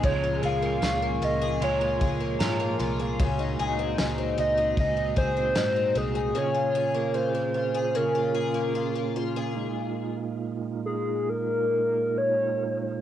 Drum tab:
RD |xxxxxxxx|xxxxxxxx|--------|--------|
TB |--x---x-|--x---x-|--------|--------|
SD |--o---o-|--o---o-|--------|--------|
BD |o----o--|o---oo--|--------|--------|